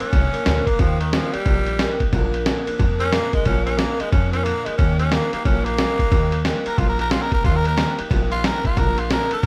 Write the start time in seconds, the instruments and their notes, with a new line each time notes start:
0.00 steel-string acoustic guitar F3 A#3 D4 A#4, tenor saxophone C#4, muted upright bass stroke, ride
0.12 upright bass C2, steel-string acoustic guitar F3 A#3 D4 A#4, kick, snare, ride
0.33 steel-string acoustic guitar F3 A#3 D4 A#4, muted upright bass stroke, ride
0.45 upright bass D2, steel-string acoustic guitar A#2 D3 F3 A#3 D4 A#4, snare, ride
0.67 steel-string acoustic guitar F3 A#3 D4 A#4, tenor saxophone A#3, muted upright bass stroke, kick, ride
0.79 upright bass D#2, steel-string acoustic guitar D#3 G3 A#3 D#4 G4, tenor saxophone F3, kick, ride
1.00 tenor saxophone D#3, steel-string acoustic guitar A#3 D#4, ride
1.13 steel-string acoustic guitar D#3 G3 A#3 D#4 G4, tenor saxophone F3, snare, ride
1.33 tenor saxophone G3, steel-string acoustic guitar A#3 D#4 G4, muted upright bass stroke, ride
1.46 upright bass A#1, steel-string acoustic guitar G3 A#3 D#4 G4, kick, ride
1.66 steel-string acoustic guitar A#3 D#4 G4, ride
1.79 steel-string acoustic guitar D#3 G3 A#3 D#4 G4, snare, ride
1.99 steel-string acoustic guitar A#3 D#4 G4, muted upright bass stroke, kick, ride
2.12 upright bass A#1, steel-string acoustic guitar A#2 D3 F3 A#3 D4 A#4, kick, ride
2.33 steel-string acoustic guitar F3 A#3 D4 A#4, ride
2.46 steel-string acoustic guitar A#2 D3 F3 A#3 D4 A#4, snare, ride
2.66 steel-string acoustic guitar F3 A#3 D4 A#4, muted upright bass stroke, ride
2.78 upright bass F2, steel-string acoustic guitar F3 A#3 D4 A#4, kick, ride
2.99 steel-string acoustic guitar F3 A#3 D4 A#4, tenor saxophone C#4, ride
3.12 steel-string acoustic guitar A#2 D3 F3 A#3 D4 A#4, tenor saxophone A#3, snare, ride
3.33 steel-string acoustic guitar F3 A#3 D4 A#4, tenor saxophone G#3, muted upright bass stroke, kick, ride
3.45 upright bass A#1, steel-string acoustic guitar A#2 D3 F3 A#3 D4 A#4, tenor saxophone C#4, kick, ride
3.66 steel-string acoustic guitar F3 A#3 D4 A#4, tenor saxophone C#4, ride
3.78 steel-string acoustic guitar A#2 D3 F3 A#3 D4 A#4, tenor saxophone A#3, snare, ride
3.99 steel-string acoustic guitar F3 A#3 D4 A#4, tenor saxophone G#3, muted upright bass stroke, ride
4.11 upright bass F2, steel-string acoustic guitar F3 A#3 D4 A#4, tenor saxophone C#4, kick, ride
4.32 steel-string acoustic guitar F3 A#3 D4 A#4, tenor saxophone C#4, ride
4.44 steel-string acoustic guitar A#2 D3 F3 A#3 D4 A#4, tenor saxophone A#3, ride
4.65 steel-string acoustic guitar F3 A#3 D4 A#4, tenor saxophone G#3, muted upright bass stroke, ride
4.77 upright bass D#2, steel-string acoustic guitar D#3 G3 A#3 D#4 G4, tenor saxophone C#4, kick, ride
4.98 steel-string acoustic guitar A#3 D#4 G4, tenor saxophone C#4, ride
5.11 steel-string acoustic guitar D#3 G3 A#3 D#4 G4, tenor saxophone A#3, snare, ride
5.32 tenor saxophone A#3, steel-string acoustic guitar A#3 D#4 G4, muted upright bass stroke, ride
5.44 upright bass A#1, steel-string acoustic guitar G3 A#3 D#4 G4, tenor saxophone C#4, kick, ride
5.65 tenor saxophone A#3, steel-string acoustic guitar A#3 D#4 G4, ride
5.77 steel-string acoustic guitar D#3 G3 A#3 D#4 G4, snare, ride
5.97 steel-string acoustic guitar A#3 D#4 G4, muted upright bass stroke, kick, ride
6.10 upright bass D#2, steel-string acoustic guitar D#3 G3 A#3 D#4 G4, kick, ride
6.31 steel-string acoustic guitar A#3 D#4 G4, ride
6.45 steel-string acoustic guitar D#3 G3 A#3 D#4 G4, snare, ride
6.64 steel-string acoustic guitar A#3 D#4 G4, tenor saxophone A#4, muted upright bass stroke, ride
6.77 upright bass A#1, steel-string acoustic guitar G3 A#3 D#4 G4, tenor saxophone F4, kick, ride
6.89 tenor saxophone A#4
6.98 steel-string acoustic guitar A#3 D#4 G4, tenor saxophone A#4, ride
7.11 steel-string acoustic guitar D#3 G3 A#3 D#4 G4, tenor saxophone F4, snare, ride
7.22 tenor saxophone A#4
7.32 steel-string acoustic guitar A#3 D#4 G4, tenor saxophone A#4, muted upright bass stroke, kick, ride
7.44 upright bass D#2, steel-string acoustic guitar D#3 G3 A#3 D#4 G4, tenor saxophone F4, kick, ride
7.56 tenor saxophone A#4
7.64 steel-string acoustic guitar A#3 D#4 G4, tenor saxophone A#4, ride
7.77 steel-string acoustic guitar D#3 G3 A#3 D#4 G4, snare, ride
7.98 steel-string acoustic guitar A#3 D#4 G4, muted upright bass stroke, ride
8.10 upright bass A#1, steel-string acoustic guitar G3 A#3 D#4 G4, kick, snare, ride
8.31 steel-string acoustic guitar D#4 G4, tenor saxophone F4, ride
8.43 steel-string acoustic guitar D#3 G3 A#3 D#4 G4, tenor saxophone A#4, snare, ride
8.64 steel-string acoustic guitar A#3 D#4 G4, tenor saxophone F4, muted upright bass stroke, kick, ride
8.76 upright bass A#1, steel-string acoustic guitar A#2 D3 F3 A#3 D4 A#4, tenor saxophone A#4, kick, ride
8.97 steel-string acoustic guitar F3 A#3 D4 A#4, tenor saxophone F4, ride
9.10 steel-string acoustic guitar A#2 D3 F3 A#3 D4 A#4, tenor saxophone A#4, snare, ride
9.31 steel-string acoustic guitar F3 A#3 D4 A#4, tenor saxophone A#4, muted upright bass stroke, ride
9.43 steel-string acoustic guitar F3